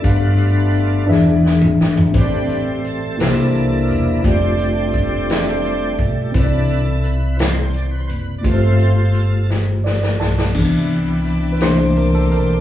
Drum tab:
CC |------------|------------|------------|------------|
HH |x-x-x-------|x-x-x-x-x-x-|x-x-x-x-x-x-|x-x-x-x-x-x-|
SD |------o-o-o-|------o-----|------o-----|------o-----|
T2 |---------o--|------------|------------|------------|
FT |-----------o|------------|------------|------------|
BD |o-----------|o-----------|o---o-----o-|o-----------|

CC |------------|x-----------|
HH |x-x-x-------|--x-x-x-x-x-|
SD |------o-oooo|------o-----|
T2 |------------|------------|
FT |------------|------------|
BD |o-----------|o-----------|